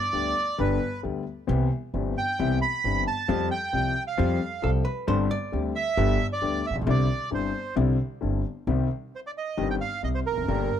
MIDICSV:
0, 0, Header, 1, 5, 480
1, 0, Start_track
1, 0, Key_signature, 0, "major"
1, 0, Tempo, 450450
1, 1578, Time_signature, 4, 2, 24, 8
1, 11505, End_track
2, 0, Start_track
2, 0, Title_t, "Bandoneon"
2, 0, Program_c, 0, 23
2, 0, Note_on_c, 0, 74, 107
2, 634, Note_on_c, 0, 71, 75
2, 644, Note_off_c, 0, 74, 0
2, 1073, Note_off_c, 0, 71, 0
2, 2319, Note_on_c, 0, 79, 90
2, 2761, Note_off_c, 0, 79, 0
2, 2788, Note_on_c, 0, 83, 107
2, 3236, Note_off_c, 0, 83, 0
2, 3273, Note_on_c, 0, 81, 93
2, 3715, Note_off_c, 0, 81, 0
2, 3742, Note_on_c, 0, 79, 103
2, 4298, Note_off_c, 0, 79, 0
2, 4341, Note_on_c, 0, 77, 72
2, 5013, Note_off_c, 0, 77, 0
2, 6132, Note_on_c, 0, 76, 103
2, 6681, Note_off_c, 0, 76, 0
2, 6743, Note_on_c, 0, 74, 101
2, 7098, Note_off_c, 0, 74, 0
2, 7103, Note_on_c, 0, 76, 84
2, 7205, Note_off_c, 0, 76, 0
2, 7351, Note_on_c, 0, 74, 90
2, 7779, Note_off_c, 0, 74, 0
2, 7824, Note_on_c, 0, 72, 66
2, 8258, Note_off_c, 0, 72, 0
2, 9757, Note_on_c, 0, 72, 61
2, 9804, Note_off_c, 0, 72, 0
2, 9875, Note_on_c, 0, 74, 77
2, 9923, Note_off_c, 0, 74, 0
2, 9992, Note_on_c, 0, 75, 70
2, 10316, Note_off_c, 0, 75, 0
2, 10343, Note_on_c, 0, 79, 75
2, 10394, Note_off_c, 0, 79, 0
2, 10452, Note_on_c, 0, 77, 82
2, 10673, Note_off_c, 0, 77, 0
2, 10697, Note_on_c, 0, 75, 79
2, 10749, Note_off_c, 0, 75, 0
2, 10813, Note_on_c, 0, 72, 71
2, 10866, Note_off_c, 0, 72, 0
2, 10937, Note_on_c, 0, 70, 73
2, 11505, Note_off_c, 0, 70, 0
2, 11505, End_track
3, 0, Start_track
3, 0, Title_t, "Hollow-body jazz guitar"
3, 0, Program_c, 1, 26
3, 4940, Note_on_c, 1, 69, 74
3, 5160, Note_off_c, 1, 69, 0
3, 5165, Note_on_c, 1, 71, 88
3, 5408, Note_off_c, 1, 71, 0
3, 5412, Note_on_c, 1, 72, 99
3, 5652, Note_off_c, 1, 72, 0
3, 5657, Note_on_c, 1, 74, 105
3, 5985, Note_off_c, 1, 74, 0
3, 11505, End_track
4, 0, Start_track
4, 0, Title_t, "Grand piano"
4, 0, Program_c, 2, 0
4, 137, Note_on_c, 2, 50, 51
4, 138, Note_on_c, 2, 38, 47
4, 139, Note_on_c, 2, 55, 41
4, 141, Note_on_c, 2, 59, 42
4, 145, Note_on_c, 2, 67, 51
4, 336, Note_off_c, 2, 38, 0
4, 336, Note_off_c, 2, 55, 0
4, 337, Note_off_c, 2, 59, 0
4, 338, Note_off_c, 2, 50, 0
4, 339, Note_off_c, 2, 67, 0
4, 621, Note_on_c, 2, 50, 65
4, 623, Note_on_c, 2, 43, 72
4, 623, Note_on_c, 2, 55, 60
4, 626, Note_on_c, 2, 31, 74
4, 628, Note_on_c, 2, 59, 59
4, 632, Note_on_c, 2, 67, 69
4, 819, Note_off_c, 2, 50, 0
4, 820, Note_off_c, 2, 43, 0
4, 820, Note_off_c, 2, 55, 0
4, 822, Note_off_c, 2, 31, 0
4, 823, Note_off_c, 2, 59, 0
4, 825, Note_off_c, 2, 67, 0
4, 1098, Note_on_c, 2, 50, 46
4, 1100, Note_on_c, 2, 38, 50
4, 1101, Note_on_c, 2, 55, 39
4, 1103, Note_on_c, 2, 59, 40
4, 1105, Note_on_c, 2, 67, 43
4, 1300, Note_off_c, 2, 38, 0
4, 1300, Note_off_c, 2, 50, 0
4, 1301, Note_off_c, 2, 55, 0
4, 1302, Note_off_c, 2, 59, 0
4, 1303, Note_off_c, 2, 67, 0
4, 1569, Note_on_c, 2, 48, 75
4, 1571, Note_on_c, 2, 52, 66
4, 1572, Note_on_c, 2, 59, 65
4, 1572, Note_on_c, 2, 60, 62
4, 1573, Note_on_c, 2, 36, 77
4, 1576, Note_on_c, 2, 67, 77
4, 1777, Note_off_c, 2, 48, 0
4, 1778, Note_off_c, 2, 52, 0
4, 1779, Note_off_c, 2, 36, 0
4, 1779, Note_off_c, 2, 59, 0
4, 1779, Note_off_c, 2, 60, 0
4, 1781, Note_off_c, 2, 67, 0
4, 2062, Note_on_c, 2, 52, 44
4, 2065, Note_on_c, 2, 43, 51
4, 2067, Note_on_c, 2, 59, 38
4, 2069, Note_on_c, 2, 31, 52
4, 2069, Note_on_c, 2, 67, 49
4, 2070, Note_on_c, 2, 60, 43
4, 2265, Note_off_c, 2, 52, 0
4, 2267, Note_off_c, 2, 43, 0
4, 2268, Note_off_c, 2, 59, 0
4, 2269, Note_off_c, 2, 31, 0
4, 2269, Note_off_c, 2, 60, 0
4, 2269, Note_off_c, 2, 67, 0
4, 2547, Note_on_c, 2, 52, 72
4, 2549, Note_on_c, 2, 59, 55
4, 2553, Note_on_c, 2, 36, 76
4, 2553, Note_on_c, 2, 67, 76
4, 2554, Note_on_c, 2, 48, 74
4, 2557, Note_on_c, 2, 60, 65
4, 2749, Note_off_c, 2, 52, 0
4, 2751, Note_off_c, 2, 59, 0
4, 2752, Note_off_c, 2, 36, 0
4, 2752, Note_off_c, 2, 67, 0
4, 2753, Note_off_c, 2, 48, 0
4, 2754, Note_off_c, 2, 60, 0
4, 3030, Note_on_c, 2, 31, 52
4, 3030, Note_on_c, 2, 60, 41
4, 3031, Note_on_c, 2, 52, 46
4, 3032, Note_on_c, 2, 59, 42
4, 3034, Note_on_c, 2, 43, 49
4, 3037, Note_on_c, 2, 67, 54
4, 3231, Note_off_c, 2, 31, 0
4, 3231, Note_off_c, 2, 52, 0
4, 3231, Note_off_c, 2, 60, 0
4, 3232, Note_off_c, 2, 59, 0
4, 3233, Note_off_c, 2, 43, 0
4, 3235, Note_off_c, 2, 67, 0
4, 3498, Note_on_c, 2, 53, 83
4, 3506, Note_on_c, 2, 41, 86
4, 3506, Note_on_c, 2, 55, 68
4, 3506, Note_on_c, 2, 60, 60
4, 3508, Note_on_c, 2, 67, 82
4, 3707, Note_off_c, 2, 41, 0
4, 3707, Note_off_c, 2, 55, 0
4, 3707, Note_off_c, 2, 60, 0
4, 3708, Note_off_c, 2, 53, 0
4, 3708, Note_off_c, 2, 67, 0
4, 3970, Note_on_c, 2, 53, 44
4, 3972, Note_on_c, 2, 36, 53
4, 3974, Note_on_c, 2, 55, 40
4, 3975, Note_on_c, 2, 48, 59
4, 3976, Note_on_c, 2, 60, 39
4, 3980, Note_on_c, 2, 67, 53
4, 4178, Note_off_c, 2, 53, 0
4, 4179, Note_off_c, 2, 36, 0
4, 4180, Note_off_c, 2, 48, 0
4, 4180, Note_off_c, 2, 55, 0
4, 4180, Note_off_c, 2, 60, 0
4, 4183, Note_off_c, 2, 67, 0
4, 4450, Note_on_c, 2, 53, 85
4, 4452, Note_on_c, 2, 60, 63
4, 4453, Note_on_c, 2, 41, 80
4, 4454, Note_on_c, 2, 55, 67
4, 4455, Note_on_c, 2, 67, 77
4, 4657, Note_off_c, 2, 53, 0
4, 4657, Note_off_c, 2, 60, 0
4, 4658, Note_off_c, 2, 41, 0
4, 4658, Note_off_c, 2, 55, 0
4, 4659, Note_off_c, 2, 67, 0
4, 4925, Note_on_c, 2, 53, 45
4, 4929, Note_on_c, 2, 55, 43
4, 4929, Note_on_c, 2, 60, 42
4, 4931, Note_on_c, 2, 36, 55
4, 4933, Note_on_c, 2, 48, 54
4, 4937, Note_on_c, 2, 67, 49
4, 5131, Note_off_c, 2, 53, 0
4, 5133, Note_off_c, 2, 55, 0
4, 5133, Note_off_c, 2, 60, 0
4, 5134, Note_off_c, 2, 36, 0
4, 5135, Note_off_c, 2, 48, 0
4, 5137, Note_off_c, 2, 67, 0
4, 5405, Note_on_c, 2, 31, 83
4, 5405, Note_on_c, 2, 43, 85
4, 5409, Note_on_c, 2, 60, 68
4, 5410, Note_on_c, 2, 50, 74
4, 5410, Note_on_c, 2, 67, 80
4, 5413, Note_on_c, 2, 55, 64
4, 5608, Note_off_c, 2, 31, 0
4, 5608, Note_off_c, 2, 43, 0
4, 5610, Note_off_c, 2, 50, 0
4, 5610, Note_off_c, 2, 60, 0
4, 5610, Note_off_c, 2, 67, 0
4, 5611, Note_off_c, 2, 55, 0
4, 5885, Note_on_c, 2, 50, 57
4, 5890, Note_on_c, 2, 38, 53
4, 5893, Note_on_c, 2, 55, 45
4, 5894, Note_on_c, 2, 60, 42
4, 5897, Note_on_c, 2, 67, 51
4, 6089, Note_off_c, 2, 38, 0
4, 6090, Note_off_c, 2, 55, 0
4, 6091, Note_off_c, 2, 60, 0
4, 6092, Note_off_c, 2, 50, 0
4, 6092, Note_off_c, 2, 67, 0
4, 6364, Note_on_c, 2, 50, 71
4, 6365, Note_on_c, 2, 43, 91
4, 6365, Note_on_c, 2, 55, 70
4, 6367, Note_on_c, 2, 31, 86
4, 6368, Note_on_c, 2, 59, 73
4, 6372, Note_on_c, 2, 67, 83
4, 6563, Note_off_c, 2, 50, 0
4, 6563, Note_off_c, 2, 55, 0
4, 6564, Note_off_c, 2, 43, 0
4, 6565, Note_off_c, 2, 31, 0
4, 6565, Note_off_c, 2, 59, 0
4, 6567, Note_off_c, 2, 67, 0
4, 6838, Note_on_c, 2, 50, 58
4, 6838, Note_on_c, 2, 55, 47
4, 6840, Note_on_c, 2, 59, 45
4, 6843, Note_on_c, 2, 67, 51
4, 6845, Note_on_c, 2, 38, 58
4, 7038, Note_off_c, 2, 55, 0
4, 7039, Note_off_c, 2, 59, 0
4, 7040, Note_off_c, 2, 67, 0
4, 7041, Note_off_c, 2, 38, 0
4, 7041, Note_off_c, 2, 50, 0
4, 7153, Note_on_c, 2, 33, 47
4, 7199, Note_on_c, 2, 34, 55
4, 7203, Note_off_c, 2, 33, 0
4, 7256, Note_off_c, 2, 34, 0
4, 7271, Note_on_c, 2, 35, 61
4, 7315, Note_on_c, 2, 50, 72
4, 7319, Note_on_c, 2, 36, 85
4, 7321, Note_on_c, 2, 55, 65
4, 7322, Note_off_c, 2, 35, 0
4, 7322, Note_on_c, 2, 48, 84
4, 7324, Note_on_c, 2, 60, 67
4, 7326, Note_on_c, 2, 64, 80
4, 7515, Note_off_c, 2, 50, 0
4, 7517, Note_off_c, 2, 36, 0
4, 7519, Note_off_c, 2, 48, 0
4, 7519, Note_off_c, 2, 55, 0
4, 7520, Note_off_c, 2, 60, 0
4, 7521, Note_off_c, 2, 64, 0
4, 7786, Note_on_c, 2, 55, 44
4, 7787, Note_on_c, 2, 31, 53
4, 7790, Note_on_c, 2, 50, 45
4, 7791, Note_on_c, 2, 64, 49
4, 7792, Note_on_c, 2, 43, 50
4, 7793, Note_on_c, 2, 60, 39
4, 7991, Note_off_c, 2, 31, 0
4, 7991, Note_off_c, 2, 55, 0
4, 7993, Note_off_c, 2, 50, 0
4, 7994, Note_off_c, 2, 43, 0
4, 7994, Note_off_c, 2, 64, 0
4, 7995, Note_off_c, 2, 60, 0
4, 8268, Note_on_c, 2, 36, 76
4, 8270, Note_on_c, 2, 55, 64
4, 8271, Note_on_c, 2, 50, 66
4, 8272, Note_on_c, 2, 64, 77
4, 8273, Note_on_c, 2, 48, 79
4, 8275, Note_on_c, 2, 60, 66
4, 8475, Note_off_c, 2, 36, 0
4, 8476, Note_off_c, 2, 55, 0
4, 8477, Note_off_c, 2, 50, 0
4, 8477, Note_off_c, 2, 64, 0
4, 8478, Note_off_c, 2, 48, 0
4, 8479, Note_off_c, 2, 60, 0
4, 8746, Note_on_c, 2, 50, 47
4, 8746, Note_on_c, 2, 55, 40
4, 8747, Note_on_c, 2, 43, 54
4, 8748, Note_on_c, 2, 60, 42
4, 8752, Note_on_c, 2, 64, 47
4, 8753, Note_on_c, 2, 31, 51
4, 8958, Note_off_c, 2, 50, 0
4, 8958, Note_off_c, 2, 55, 0
4, 8959, Note_off_c, 2, 43, 0
4, 8959, Note_off_c, 2, 60, 0
4, 8961, Note_off_c, 2, 31, 0
4, 8961, Note_off_c, 2, 64, 0
4, 9242, Note_on_c, 2, 51, 62
4, 9243, Note_on_c, 2, 36, 73
4, 9244, Note_on_c, 2, 48, 74
4, 9245, Note_on_c, 2, 55, 54
4, 9246, Note_on_c, 2, 60, 58
4, 9246, Note_on_c, 2, 67, 68
4, 9446, Note_off_c, 2, 51, 0
4, 9447, Note_off_c, 2, 36, 0
4, 9447, Note_off_c, 2, 48, 0
4, 9448, Note_off_c, 2, 55, 0
4, 9448, Note_off_c, 2, 60, 0
4, 9448, Note_off_c, 2, 67, 0
4, 10200, Note_on_c, 2, 51, 63
4, 10202, Note_on_c, 2, 43, 69
4, 10204, Note_on_c, 2, 31, 64
4, 10207, Note_on_c, 2, 55, 57
4, 10208, Note_on_c, 2, 67, 67
4, 10209, Note_on_c, 2, 60, 49
4, 10406, Note_off_c, 2, 51, 0
4, 10407, Note_off_c, 2, 31, 0
4, 10407, Note_off_c, 2, 43, 0
4, 10409, Note_off_c, 2, 55, 0
4, 10410, Note_off_c, 2, 60, 0
4, 10410, Note_off_c, 2, 67, 0
4, 10685, Note_on_c, 2, 48, 49
4, 10687, Note_on_c, 2, 36, 45
4, 10888, Note_off_c, 2, 48, 0
4, 10889, Note_off_c, 2, 36, 0
4, 10995, Note_on_c, 2, 40, 41
4, 11051, Note_off_c, 2, 40, 0
4, 11056, Note_on_c, 2, 41, 45
4, 11111, Note_off_c, 2, 41, 0
4, 11120, Note_on_c, 2, 42, 56
4, 11167, Note_on_c, 2, 58, 57
4, 11170, Note_on_c, 2, 50, 60
4, 11171, Note_on_c, 2, 43, 72
4, 11171, Note_on_c, 2, 55, 63
4, 11173, Note_off_c, 2, 42, 0
4, 11175, Note_on_c, 2, 31, 76
4, 11179, Note_on_c, 2, 67, 70
4, 11368, Note_off_c, 2, 58, 0
4, 11369, Note_off_c, 2, 43, 0
4, 11369, Note_off_c, 2, 50, 0
4, 11369, Note_off_c, 2, 55, 0
4, 11372, Note_off_c, 2, 31, 0
4, 11373, Note_off_c, 2, 67, 0
4, 11505, End_track
5, 0, Start_track
5, 0, Title_t, "Upright bass"
5, 0, Program_c, 3, 32
5, 137, Note_on_c, 3, 38, 60
5, 335, Note_off_c, 3, 38, 0
5, 627, Note_on_c, 3, 31, 77
5, 822, Note_off_c, 3, 31, 0
5, 1115, Note_on_c, 3, 38, 55
5, 1308, Note_off_c, 3, 38, 0
5, 1588, Note_on_c, 3, 36, 92
5, 1787, Note_off_c, 3, 36, 0
5, 2064, Note_on_c, 3, 31, 64
5, 2266, Note_off_c, 3, 31, 0
5, 2553, Note_on_c, 3, 36, 82
5, 2753, Note_off_c, 3, 36, 0
5, 3028, Note_on_c, 3, 31, 61
5, 3230, Note_off_c, 3, 31, 0
5, 3505, Note_on_c, 3, 41, 97
5, 3707, Note_off_c, 3, 41, 0
5, 3980, Note_on_c, 3, 36, 62
5, 4183, Note_off_c, 3, 36, 0
5, 4466, Note_on_c, 3, 41, 96
5, 4664, Note_off_c, 3, 41, 0
5, 4944, Note_on_c, 3, 36, 65
5, 5140, Note_off_c, 3, 36, 0
5, 5413, Note_on_c, 3, 31, 95
5, 5612, Note_off_c, 3, 31, 0
5, 5894, Note_on_c, 3, 38, 67
5, 6091, Note_off_c, 3, 38, 0
5, 6365, Note_on_c, 3, 31, 98
5, 6564, Note_off_c, 3, 31, 0
5, 6840, Note_on_c, 3, 38, 66
5, 7039, Note_off_c, 3, 38, 0
5, 7141, Note_on_c, 3, 33, 48
5, 7191, Note_off_c, 3, 33, 0
5, 7198, Note_on_c, 3, 34, 62
5, 7256, Note_off_c, 3, 34, 0
5, 7262, Note_on_c, 3, 35, 67
5, 7312, Note_off_c, 3, 35, 0
5, 7318, Note_on_c, 3, 36, 98
5, 7517, Note_off_c, 3, 36, 0
5, 7798, Note_on_c, 3, 31, 59
5, 7997, Note_off_c, 3, 31, 0
5, 8275, Note_on_c, 3, 36, 93
5, 8479, Note_off_c, 3, 36, 0
5, 8765, Note_on_c, 3, 31, 54
5, 8967, Note_off_c, 3, 31, 0
5, 9240, Note_on_c, 3, 36, 82
5, 9445, Note_off_c, 3, 36, 0
5, 10206, Note_on_c, 3, 31, 75
5, 10409, Note_off_c, 3, 31, 0
5, 10689, Note_on_c, 3, 36, 52
5, 10890, Note_off_c, 3, 36, 0
5, 10993, Note_on_c, 3, 28, 39
5, 11046, Note_off_c, 3, 28, 0
5, 11053, Note_on_c, 3, 29, 50
5, 11097, Note_off_c, 3, 29, 0
5, 11103, Note_on_c, 3, 30, 57
5, 11165, Note_off_c, 3, 30, 0
5, 11171, Note_on_c, 3, 31, 79
5, 11369, Note_off_c, 3, 31, 0
5, 11505, End_track
0, 0, End_of_file